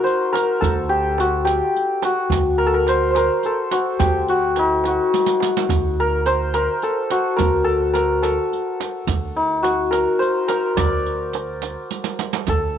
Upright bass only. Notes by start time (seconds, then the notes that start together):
0.62 D2
2.30 D2
4.00 D2
5.69 D2
7.40 D2
9.07 D2
10.77 D2
12.48 D2